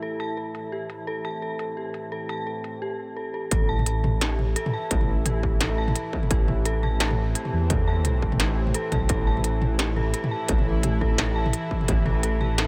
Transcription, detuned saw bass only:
3.51 A1
4.91 A1
6.31 A1
7.53 E2
8.22 A1
8.92 B1
9.10 A1
10.49 A1
11.89 A1

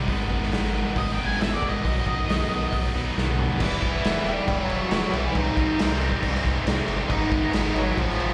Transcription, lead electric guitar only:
0.98 D#5
1.12 G5
1.25 G#5
1.40 E5
1.54 D5
1.69 D#5
3.62 E3 E4
4.28 G3 G4
4.49 F#3 G4
4.60 F#4
5.16 E3 E4
5.36 D#4 D#5
7.10 D#4 D#5
7.76 F#3 F#4
7.98 F3 F4

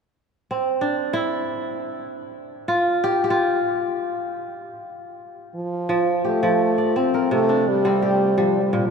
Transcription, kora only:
0.51 C4
0.81 D4
1.13 E4
2.68 F4
3.04 G4
3.24 G4
3.30 F4
5.89 F3
6.25 G4
6.43 F3
6.78 D5
6.96 C4
7.14 A#4
7.31 C3
7.49 D4
7.85 G3 C4
8.02 G4
8.38 G3
8.73 A#2

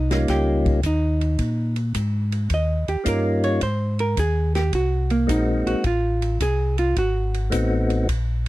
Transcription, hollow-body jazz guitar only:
Already playing: D#4
0.30 G4
0.86 D#4
2.54 D#5
2.89 G4
3.08 A#4
3.44 C#5
3.63 C5
4.00 A#4
4.19 G#4
4.55 G4
4.75 F#4
5.11 A#3
5.30 D#4
5.67 F#4
5.87 F4
6.42 G#4
6.79 F4
6.98 F#4

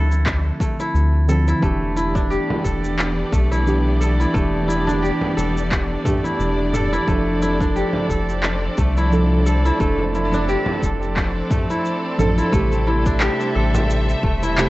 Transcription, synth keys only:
Already playing: D3 F3 C4
1.27 D3 F3 C4
1.60 E3 D4
1.64 G4
3.66 E3 D4 G4
4.33 E3 D4 G4
6.04 E3 D4 G4
7.07 F3 D4 A4
9.11 F3 D4 A4
9.78 F3 D4
9.82 A4
12.18 F3 D4 A4
12.52 C3 A3 G4
14.57 C3 A3 G4

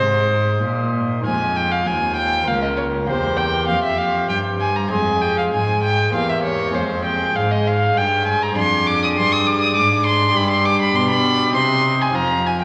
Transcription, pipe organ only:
Already playing: D#4 C5
0.00 G#2
0.63 A#2
1.22 G#3 F4 C5
1.26 F2
1.88 D#2
2.44 A#3 F4 A#4
2.49 C#2
3.05 A#3 G4 C5
3.10 E2
3.70 F2
4.31 G2
4.89 G#3 G#4 C5
4.94 F2
5.54 G#2
6.10 A#3 G4 C5
6.15 E2
6.71 G#3 G#4 C5
6.76 F2
7.36 G#2
7.98 G2
8.53 D4 G#4 D5
8.58 F2
9.16 G2
9.75 G#2
10.30 D4 G4 D5
10.34 G2
10.95 B2
11.50 D#4 G4 C5
11.54 C3
12.11 C4 F4 C5
12.15 F2

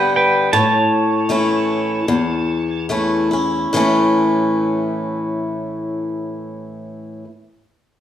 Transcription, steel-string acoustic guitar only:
Already playing: D3 G3 B3 G4
0.53 A2
1.29 E3 A3 C#4 E4
2.08 E2
2.89 E3 A3 C#4 E4
3.31 C#4 E4
3.73 A2 E3 A3 C#4 E4

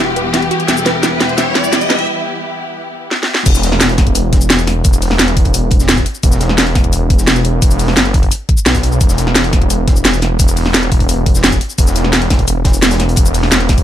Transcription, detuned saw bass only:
Already playing: E1
0.68 E1
3.46 E1
4.85 E1
5.19 E1
6.23 E1
7.62 E1
7.97 F#1
8.66 B1
9.01 E1
10.40 E1
10.74 E1
11.78 E1
13.17 E1
13.52 E1

